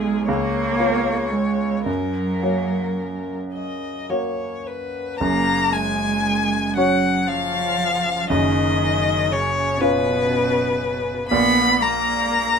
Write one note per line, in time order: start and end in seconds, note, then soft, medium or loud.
0.00 0.30 B1 medium
0.00 0.29 G#3 medium
0.00 0.24 B3 soft
0.00 0.24 D#4 soft
0.00 0.27 G#4 medium
0.00 0.24 D#5 soft
0.27 0.78 C#2 medium
0.27 1.32 A#3 medium
0.27 1.84 C#5 medium
0.80 1.84 B3 soft
0.80 1.84 F4 soft
0.80 1.84 C#5 soft
1.31 1.87 G#3 medium
1.86 2.41 F#2 soft
1.86 3.53 F#3 medium
1.86 3.40 A#4 soft
2.43 4.05 A#3 soft
2.43 4.06 F#4 soft
2.43 4.06 C#5 soft
3.54 4.12 D#5 soft
4.10 5.16 A#3 soft
4.10 5.16 F#4 soft
4.10 4.68 C#5 soft
4.10 5.17 C#5 soft
4.66 5.18 B4 soft
5.19 8.27 F#1 soft
5.19 8.27 F#2 medium
5.19 5.73 A#3 medium
5.19 5.74 A#5 medium
5.71 6.77 G#3 medium
5.71 6.76 G#5 medium
6.75 7.27 F#3 medium
6.75 8.26 C#4 soft
6.75 8.27 F#4 soft
6.75 8.27 C#5 soft
6.75 7.30 F#5 medium
7.26 8.29 F3 medium
7.26 8.29 F5 medium
8.30 11.27 F#1 medium
8.30 11.27 F#2 medium
8.30 9.32 D#3 medium
8.30 9.34 D#5 medium
9.31 9.80 C#3 medium
9.31 9.82 C#5 medium
9.79 11.27 B2 medium
9.79 11.27 C#4 soft
9.79 11.27 F4 soft
9.79 11.29 B4 medium
9.79 11.27 C#5 medium
11.28 12.59 A#1 medium
11.28 12.59 A#2 medium
11.28 11.82 B3 medium
11.28 11.84 B5 loud
11.80 12.59 A#3 medium
11.80 12.59 A#5 medium